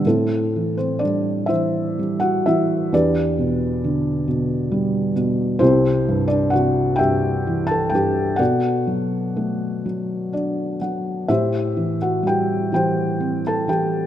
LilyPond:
<<
  \new Staff \with { instrumentName = "Felt piano" } { \time 6/8 \key a \dorian \tempo 4. = 42 <a c' e' a'>8. <c' c''>16 <d' d''>8 <e' c'' e''>8. <fis' fis''>16 <e' e''>8 | <d' g' b' d''>2~ <d' g' b' d''>8 r8 | <c' e' g' c''>8. <d' d''>16 <fis' fis''>8 <g' e'' g''>8. <a' a''>16 <g' g''>8 | <fis' a' d'' fis''>2~ <fis' a' d'' fis''>8 r8 |
<e' g' c'' e''>8. <fis' fis''>16 <g' g''>8 <g' c'' g''>8. <a' a''>16 <g' g''>8 | }
  \new Staff \with { instrumentName = "Felt piano" } { \clef bass \time 6/8 \key a \dorian a,8 e8 g8 e8 g8 e8 | e,8 b,8 d8 b,8 g8 b,8 | c,8 g,8 c8 g,8 e8 g,8 | b,8 fis8 a8 fis8 <d' d''>8 <fis fis''>8 |
a,8 e8 g8 e8 c'8 e8 | }
>>